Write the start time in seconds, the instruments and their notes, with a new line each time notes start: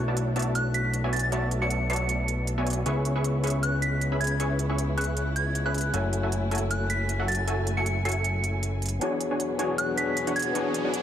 Already playing: analog synth bass B1, string section A3 B3 D4, tine electric piano A3 D4 E4 F#4 C#6
0.08 supersaw synth B3 F#4 C#5 D5 E5 A5
0.17 closed hi-hat
0.36 supersaw synth B3 F#4 C#5 D5 E5 A5, closed hi-hat
0.39 closed hi-hat
0.42 closed hi-hat
0.55 synth bell F#6, closed hi-hat
0.74 synth bell B6, closed hi-hat
0.94 closed hi-hat
1.04 supersaw synth B3 F#4 C#5 D5 E5 G#5
1.13 synth bell A6, closed hi-hat
1.16 closed hi-hat
1.19 synth bell A6, closed hi-hat
1.32 supersaw synth B3 F#4 C#5 D5 E5 A5, closed hi-hat
1.51 closed hi-hat
1.62 supersaw synth B3 F#4 C#5 D5 E5 A5, synth bell C#7
1.70 synth bell C#7, closed hi-hat
1.90 supersaw synth B3 F#4 C#5 D5 E5 A5, synth bell C#7, closed hi-hat
1.93 closed hi-hat
1.96 closed hi-hat
2.09 closed hi-hat
2.28 closed hi-hat
2.47 closed hi-hat
2.58 supersaw synth B3 F#4 C#5 D5 E5 G#5
2.67 closed hi-hat
2.70 closed hi-hat
2.73 closed hi-hat
2.84 analog synth bass C#2, string section C#3 G#3 E4, tine electric piano B3 C#4 E4 G#4, supersaw synth C#4 G#4 B4 E5 C#6, closed hi-hat
2.88 tine electric piano C#5
3.05 closed hi-hat
3.16 supersaw synth C#4 G#4 B4 E5 C#6
3.24 closed hi-hat
3.44 supersaw synth C#4 G#4 B4 E5 C#6, closed hi-hat
3.47 closed hi-hat
3.50 closed hi-hat
3.63 synth bell F#6, closed hi-hat
3.82 synth bell B6, closed hi-hat
4.01 closed hi-hat
4.12 supersaw synth C#4 G#4 B4 E5 B5
4.20 synth bell G#6, closed hi-hat
4.24 closed hi-hat
4.27 closed hi-hat
4.31 synth bell G#6
4.40 supersaw synth C#4 G#4 B4 E5 C#6, closed hi-hat
4.59 closed hi-hat
4.70 supersaw synth C#4 G#4 B4 E5 C#6
4.78 closed hi-hat
4.97 supersaw synth C#4 G#4 B4 E5 C#6, synth bell F#6, closed hi-hat
5.01 closed hi-hat
5.04 closed hi-hat
5.17 closed hi-hat
5.36 synth bell G#6, closed hi-hat
5.55 closed hi-hat
5.66 supersaw synth C#4 G#4 B4 E5 B5, synth bell F#6
5.74 closed hi-hat
5.78 closed hi-hat
5.81 closed hi-hat
5.92 analog synth bass F#1, string section F#3 A3 G#5, supersaw synth F#3 F#4 A4 E5 G#5, tine electric piano A3 E4 F#4 G#5, closed hi-hat
5.96 tine electric piano C#5
6.13 closed hi-hat
6.23 supersaw synth F#3 F#4 A4 E5 G#5
6.32 closed hi-hat
6.51 supersaw synth F#3 F#4 A4 E5 G#5, closed hi-hat
6.55 closed hi-hat
6.58 closed hi-hat
6.71 synth bell F#6, closed hi-hat
6.90 synth bell B6, closed hi-hat
7.09 closed hi-hat
7.20 supersaw synth F#3 F#4 A4 E5 F#5
7.28 synth bell A6, closed hi-hat
7.32 closed hi-hat
7.35 synth bell A6, closed hi-hat
7.47 supersaw synth F#3 F#4 A4 E5 G#5, closed hi-hat
7.67 closed hi-hat
7.77 supersaw synth F#3 F#4 A4 E5 G#5, synth bell C#7
7.86 synth bell C#7, closed hi-hat
8.05 supersaw synth F#3 F#4 A4 E5 G#5, synth bell C#7, closed hi-hat
8.09 closed hi-hat
8.12 closed hi-hat
8.24 closed hi-hat
8.44 closed hi-hat
8.63 closed hi-hat
8.82 closed hi-hat
8.86 closed hi-hat
8.89 closed hi-hat
8.99 string section E2 B2 F#3 D4 G#4 B4, supersaw synth E3 D4 F#4 C#5 G#5, tine electric piano B3 D4 F#4 G#4 C#5, closed hi-hat, riser
9.21 closed hi-hat
9.31 supersaw synth E3 D4 F#4 C#5 G#5
9.40 closed hi-hat
9.58 supersaw synth E3 D4 F#4 C#5 G#5, tine electric piano B3 D4 F#4 G#4 C#5, closed hi-hat
9.78 synth bell F#6, closed hi-hat
9.96 tine electric piano B3 D4 F#4 G#4, synth bell B6, closed hi-hat
10.00 tine electric piano C#5
10.17 closed hi-hat
10.27 supersaw synth E3 D4 F#4 C#5 F#5, closed hi-hat
10.36 synth bell G#6, closed hi-hat
10.39 closed hi-hat
10.42 synth bell G#6, closed hi-hat
10.53 supersaw synth E3 D4 F#4 C#5 G#5, tine electric piano B3 D4 F#4 G#4, closed hi-hat
10.57 tine electric piano C#5
10.74 closed hi-hat
10.85 supersaw synth E3 D4 F#4 C#5 G#5
10.94 closed hi-hat